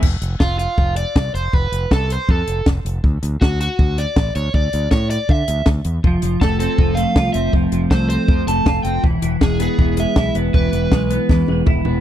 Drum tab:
CC |x-------|--------|--------|--------|
HH |-x-x-x-x|-x-x-x-x|-x-x-x-x|-x-x-x-x|
SD |--o---o-|--o---o-|--o--oo-|--o--oo-|
T1 |--------|--------|--------|--------|
T2 |--------|--------|--------|--------|
FT |--------|--------|--------|--------|
BD |o-o-o-o-|o-o-o-o-|o-o-o-o-|o-o-o-o-|

CC |--------|--------|--------|--------|
HH |-x-x-x-x|-x-x-x-x|-x-x-x-x|-x-x----|
SD |--o---o-|--o--oo-|--o---o-|--o-o---|
T1 |--------|--------|--------|-----o--|
T2 |--------|--------|--------|------o-|
FT |--------|--------|--------|-------o|
BD |o-o-o-o-|o-o-o-o-|o-o-o-o-|o-o-o-o-|